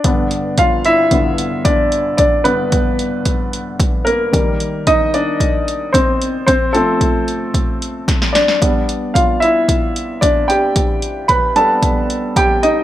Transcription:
<<
  \new Staff \with { instrumentName = "Upright piano" } { \time 4/4 \key g \mixolydian \tempo 4 = 112 <d' d''>8 r8 <f' f''>8 <e' e''>4. <d' d''>4 | <d' d''>8 b'4. r4. <bes bes'>8~ | <bes bes'>8 r8 <ees' ees''>8 <d' d''>4. <c' c''>4 | <c' c''>8 a'4. r4. <d' d''>8~ |
<d' d''>8 r8 <f' f''>8 <e' e''>4. <d' d''>8 <g' g''>8~ | <g' g''>8 r8 <b' b''>8 <a' a''>4. <g' g''>8 <ees' ees''>8 | }
  \new Staff \with { instrumentName = "Upright piano" } { \clef bass \time 4/4 \key g \mixolydian <g, d b>2 <g, d b>8 r4. | r8 <g, d b>4. r2 | <ees g bes>4. r2 r8 | r8 <f a c'>2.~ <f a c'>8 |
<g b d'>4. r2 r8 | r4. <g b d'>4. r4 | }
  \new DrumStaff \with { instrumentName = "Drums" } \drummode { \time 4/4 <hh bd>8 hh8 <hh bd>8 hh8 <hh bd>8 hh8 <hh bd>8 hh8 | <hh bd>8 hh8 <hh bd>8 hh8 <hh bd>8 hh8 <hh bd>8 hh8 | <hh bd>8 hh8 <hh bd>8 hh8 <hh bd>8 hh8 <hh bd>8 hh8 | <hh bd>8 hh8 <hh bd>8 hh8 <hh bd>8 hh8 <hh bd sn>16 sn16 <hh sn>16 sn16 |
<hh bd>8 hh8 <hh bd>8 hh8 <hh bd>8 hh8 <hh bd>8 hh8 | <hh bd>8 hh8 <hh bd>8 hh8 <hh bd>8 hh8 <hh bd>8 hh8 | }
>>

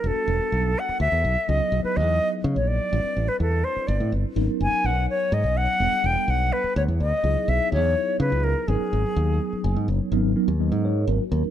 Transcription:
<<
  \new Staff \with { instrumentName = "Flute" } { \time 6/8 \key gis \minor \tempo 4. = 83 a'4. fis''8 e''4 | dis''8. b'16 dis''4~ dis''16 cis''16 d''8~ | d''8. b'16 a'8 c''8 d''8 r8 | r8 gis''8 fis''8 cis''8 dis''8 fis''8~ |
fis''8 g''8 fis''8 b'8 cis''8 dis''8~ | dis''8 e''8 cis''4 b'8 ais'8 | gis'2~ gis'8 r8 | r2. | }
  \new Staff \with { instrumentName = "Tine electric piano" } { \time 6/8 \key gis \minor << { r2. | r2. | r2. | r2. |
r2. | r2. | r2 gis''8 cis''8 | r4 <b' dis''>8 <cis' gis' ais' cis''>8 <ais fis'>4 | } \\ { <g b d' fis' a'>2. | <fis b dis' e' gis'>2. | <g c' d' e' b'>2. | <fis b cis' dis' ais'>2. |
<g b d' fis' a'>2. | <fis b dis' e' gis'>2. | <fis b cis' dis' ais'>2. | <fis b cis' dis' ais'>8 <fis b cis' dis' ais'>8 <fis b cis' dis' ais'>8 r8 <fis b cis' dis' ais'>8 <fis b cis' dis' ais'>8 | } >> }
  \new Staff \with { instrumentName = "Fingered electric bass" } { \clef bass \time 6/8 \key gis \minor e,,16 r16 e,,16 r16 b,,8 r8 d,16 e,16 b,,16 r16 | cis,16 r16 b,,16 r16 e,8 r8 cis16 ais,,8 r16 | a,,16 r16 a,,16 r16 e,8 r8 g,,16 a,16 g,,16 r16 | gis,,16 r16 fis,,16 r16 b,,8 r8 gis,16 b,,8 r16 |
e,,16 r16 e,,16 r16 b,,8 r8 d,16 e,16 d,16 r16 | cis,16 r16 b,,16 r16 e,8 r8 cis16 cis,8 r16 | gis,,16 r16 gis,,16 r16 dis,8 r8 fis,,16 gis,16 fis,,16 r16 | gis,,8 r16 dis,8 gis,8. gis,,16 r16 dis,16 r16 | }
>>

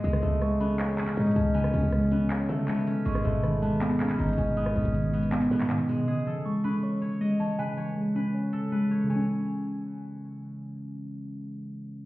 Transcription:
<<
  \new Staff \with { instrumentName = "Synth bell" } { \time 4/4 \key cis \minor \tempo 4 = 159 dis'''4 cis'''8 b''8 cis'''4. a''8 | gis''2. r4 | cis'''4 b''8 a''8 b''4. gis''8 | dis'''1 |
dis'''4 cis'''8 b''8 cis'''4. a''8 | gis''2. r4 | gis''2. r4 | r1 | }
  \new Staff \with { instrumentName = "Guzheng" } { \time 4/4 \key cis \minor gis8 a4 b4 cis'8 dis'8 cis'8 | b8 cis'4 b4 a8 b8 cis'8 | gis8 a4 b4 cis'8 dis'8 cis'8 | b8 cis'4 b4 b4 gis8 |
gis'8 a'4 b'4 cis''8 dis''8 cis''8 | b'8 cis''4 b'4 a'8 b'8 cis''8 | cis''2. r4 | r1 | }
  \new Staff \with { instrumentName = "Synth keys" } { \clef bass \time 4/4 \key cis \minor cis8 e8 gis8 cis'8 cis''4 gis8 e8 | cis8 e8 gis8 cis'8 cis''4 gis8 e8 | gis,8 b,8 dis8 gis8 b4 dis8 b,8 | gis,8 b,8 dis8 gis8 b4 dis8 b,8 |
cis8 e8 gis8 cis'8 cis''4 gis8 e8 | cis8 e8 gis8 cis'8 cis''4 gis8 e8 | <cis e gis cis'>1~ | <cis e gis cis'>1 | }
  \new Staff \with { instrumentName = "808-style bass" } { \clef bass \time 4/4 \key cis \minor cis,8 cis,2~ cis,8 gis,8 cis,8~ | cis,8 cis,16 cis,4.~ cis,16 cis4. | gis,,8 gis,,2~ gis,,8 gis,,8 gis,,8~ | gis,,8 gis,,16 gis,,4.~ gis,,16 gis,4. |
r1 | r1 | r1 | r1 | }
  \new DrumStaff \with { instrumentName = "Drums" } \drummode { \time 4/4 hh16 ss16 hh8 <hh ss>8 hh8 <hc hh>8 <hc hh>16 hc16 hh32 hh32 hh32 hh32 hh8 | hh16 ss16 hh8 <hh ss>8 hh8 <hc hh>8 hh8 \tuplet 3/2 { <hc hh>16 hh16 hh16 hh16 r16 r16 } | hh16 ss16 hh8 <hh ss>8 hh8 <hc hh>8 <hc hh>16 hc16 hh32 hh32 hh32 hh32 hh8 | hh16 ss16 hh16 hh16 hh8 <hh hho>16 hh16 <hc hh>16 hh16 hh32 hh32 <hc hh>32 hh32 <hc hh>8 hho8 |
r4 r4 r4 r4 | r4 r4 r4 r4 | r4 r4 r4 r4 | r4 r4 r4 r4 | }
>>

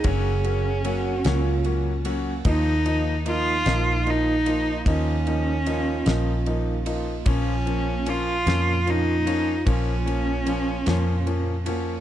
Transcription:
<<
  \new Staff \with { instrumentName = "French horn section" } { \time 6/8 \key ees \minor \tempo 4. = 50 aes'4 ges'8 f'4 r8 | ees'2.~ | ees'4 f'4. r8 | f'2.~ |
f'2 r8 ges'8 | }
  \new Staff \with { instrumentName = "Cello" } { \time 6/8 \key ees \minor des'2~ des'8 r8 | ees'4 f'4 ees'4 | des'2~ des'8 r8 | des'4 f'4 ees'4 |
des'2~ des'8 r8 | }
  \new Staff \with { instrumentName = "Clean electric guitar" } { \time 6/8 \key ees \minor <ges, des ges bes des' ges'>4 <ges bes des' ges'>8 <ges, des ges bes des'>4 <ges bes des' ges'>8 | <ees bes ees' f'>4 <ees bes ees' f'>8 <ees bes ees' f'>4 <bes ees' f'>8 | <ees bes ees' f'>4 <ees bes ees' f'>8 <ees bes ees' f'>4 <bes ees' f'>8 | <bes, f bes des' f'>4 <f bes des' f'>8 <bes, f bes des' f'>4 <bes des' f'>8 |
<bes, f bes des' f'>4 <f bes des' f'>8 <bes, f bes des' f'>4 <bes des'>8 | }
  \new Staff \with { instrumentName = "Grand piano" } { \time 6/8 \key ees \minor <ges bes des'>8 <ges bes des'>8 <ges bes des'>8 <ges bes des'>8 <ges bes des'>8 <ges bes des'>8 | <f bes ees'>8 <f bes ees'>8 <f bes ees'>8 <f bes ees'>8 <f bes ees'>8 <f bes ees'>8 | <f bes ees'>8 <f bes ees'>8 <f bes ees'>8 <f bes ees'>8 <f bes ees'>8 <f bes ees'>8 | <f bes des'>8 <f bes des'>8 <f bes des'>8 <f bes des'>8 <f bes des'>8 <f bes des'>8 |
<f bes des'>8 <f bes des'>8 <f bes des'>8 <f bes des'>8 <f bes des'>8 <f bes des'>8 | }
  \new Staff \with { instrumentName = "Fingered electric bass" } { \clef bass \time 6/8 \key ees \minor ges,,4. des,4. | ees,4. bes,,4. | ees,4. bes,,4. | bes,,4. f,4. |
bes,,4. f,4. | }
  \new DrumStaff \with { instrumentName = "Drums" } \drummode { \time 6/8 <bd cymr>8 cymr8 cymr8 <cymr sn>8 cymr8 cymr8 | <bd cymr>8 cymr8 cymr8 <cymr sn>8 cymr8 cymr8 | <bd cymr>8 cymr8 cymr8 <cymr sn>8 cymr8 cymr8 | <bd cymr>8 cymr8 cymr8 <cymr sn>8 cymr8 cymr8 |
<bd cymr>8 cymr8 cymr8 <cymr sn>8 cymr8 cymr8 | }
>>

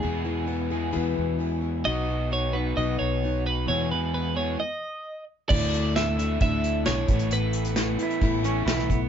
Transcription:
<<
  \new Staff \with { instrumentName = "Clean electric guitar" } { \time 4/4 \key e \major \tempo 4 = 132 gis'4 r2. | dis''4 cis''8 b'8 dis''8 cis''4 b'8 | cis''8 b'8 b'8 cis''8 dis''4. r8 | d''4 e''4 e''4 cis''4 |
b'2. r4 | }
  \new Staff \with { instrumentName = "Pedal steel guitar" } { \time 4/4 \key e \major r1 | r1 | r1 | r1 |
r4. e'4 cis'8 e'8. r16 | }
  \new Staff \with { instrumentName = "Steel-string acoustic guitar" } { \time 4/4 \key e \major <e, b, e b e' gis'>8 <e b e' gis'>8 <e b e' gis'>8 <e b e' gis'>8 <e, b, e b e' gis'>4 <e b e' gis'>8 <e b e' gis'>8 | <b, fis b dis' fis'>8 <b dis' fis'>8 <fis b dis' fis'>8 <b dis' fis'>8 <b, fis b dis' fis'>4 <fis b dis' fis'>4 | <e, b, e gis b gis'>8 <e gis b gis'>8 <e gis b gis'>8 <e gis b gis'>8 r2 | <d a d' e'>4 <d a d'>8 <a d' e'>8 <d a d' e'>4 <d a d' e'>8 <a b e'>8 |
<a, e a b e'>4 <e a b e'>8 <a b e'>8 <a, e a b e'>4 <e a b e'>8 <a b e'>8 | }
  \new Staff \with { instrumentName = "Overdriven electric guitar" } { \time 4/4 \key e \major <e, b, e gis b gis'>4. <e, b, e gis b gis'>2~ <e, b, e gis b gis'>8 | <b, fis b dis' fis'>4. <b, fis b dis' fis'>2~ <b, fis b dis' fis'>8 | <e, b, e gis b gis'>4. <e, b, e gis b gis'>8 r2 | <d a d' e'>4. <d a d' e'>4. <d a d' e'>8 <a, e a b e'>8~ |
<a, e a b e'>4 <a, e a b e'>4. <a, e a b e'>4 r8 | }
  \new Staff \with { instrumentName = "Fingered electric bass" } { \clef bass \time 4/4 \key e \major e,2 e,8 e,4. | b,,2 b,,8 b,,4. | e,2 r2 | d,2 d,4 b,,8 a,,8~ |
a,,4. r8 a,,4 b,,4 | }
  \new DrumStaff \with { instrumentName = "Drums" } \drummode { \time 4/4 r4 r4 r4 r4 | r4 r4 r4 r4 | r4 r4 r4 r4 | <cymc bd>8 hh8 <hh sn>8 hh8 <hh bd>8 hh8 <hh sn>8 <hh bd>16 hh16 |
hh8 hh16 hh16 <hh sn>8 hh16 hh16 <hh bd>8 hh8 <hh sn>16 sn16 <hh bd>8 | }
>>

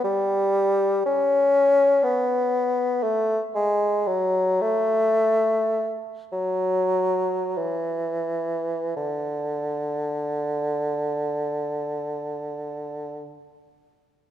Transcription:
\new Staff \with { instrumentName = "Bassoon" } { \clef bass \time 4/4 \key d \major \tempo 4 = 50 g4 cis'4 b4 a8 gis8 | fis8 a4 r8 fis4 e4 | d1 | }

